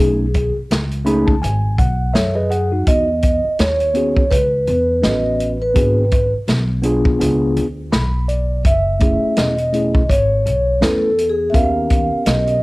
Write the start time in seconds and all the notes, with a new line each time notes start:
Already playing: A3 C#4 G#4
0.00 B1 D#4 G#4
0.34 kick, closed hi-hat
0.56 muted upright bass stroke
0.71 C#2, snare, closed hi-hat
0.91 closed hi-hat
1.05 A3 C#4 D#4 G#4 B5, closed hi-hat
1.27 A5, kick
1.42 G#1 G#5, closed hi-hat
1.78 B1 F#5, kick, closed hi-hat
2.14 F#2 A4 C#5 E5, snare, closed hi-hat
2.36 G#4 B4 D#5
2.50 G#4 F#5, closed hi-hat
2.72 D#4 F#4
2.87 E2 D#5, kick, closed hi-hat
3.22 kick, closed hi-hat
3.45 muted upright bass stroke
3.59 D#2 C#5, snare, closed hi-hat
3.80 closed hi-hat
3.94 B3 C#4 F#4 G#4, closed hi-hat
4.16 kick
4.31 C#2 B4, kick, closed hi-hat
4.67 E2, closed hi-hat
5.02 A1 B3 C#4 F#4 A4 D#5, snare, closed hi-hat
5.11 B4
5.40 closed hi-hat
5.62 B4
5.74 G#1 B3 D4 F#4 G#4, kick, closed hi-hat
6.11 kick, closed hi-hat
6.34 muted upright bass stroke
6.48 B1, snare, closed hi-hat
6.82 B3 D4 F4 G#4, closed hi-hat
7.05 kick
7.19 C#2 B3 D4 F4 G#4, closed hi-hat
7.56 D2, closed hi-hat
7.92 B1 B5, snare, closed hi-hat
8.28 D5, closed hi-hat
8.65 F#1 E5, kick, closed hi-hat
9.00 A3 C#4 E4 G#4, kick, closed hi-hat
9.22 muted upright bass stroke
9.36 E1 D#5, snare, closed hi-hat
9.58 closed hi-hat
9.72 A3 C#4 E4 G#4, closed hi-hat
9.95 kick
10.09 G#1 C#5, kick, closed hi-hat
10.46 B1, closed hi-hat
10.81 E2 A3 C#4 E4 A4 B4, snare, closed hi-hat
11.18 closed hi-hat
11.30 G#4
11.50 B3 C#4 E5
11.54 D#2 F4 A#4 F5, kick, closed hi-hat
11.61 G4
11.90 kick, closed hi-hat
12.11 muted upright bass stroke
12.26 B1 D#5, snare, closed hi-hat
12.47 closed hi-hat